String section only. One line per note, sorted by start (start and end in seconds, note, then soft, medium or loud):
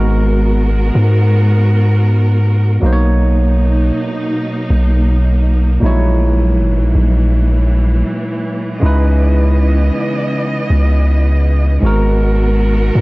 0.00 2.80 G#3 medium
0.00 2.79 B3 medium
0.00 2.79 F#4 medium
0.00 2.79 A#4 medium
2.82 5.79 B2 medium
2.82 8.78 A#3 medium
2.82 5.79 D#4 medium
5.82 11.78 E3 medium
5.82 8.79 F#3 medium
8.82 11.79 C#3 medium
8.82 11.80 B3 medium
8.82 11.79 D#5 medium
11.82 13.01 G#3 medium
11.82 13.01 B3 medium
11.82 13.01 F#4 medium
11.82 13.01 A#4 medium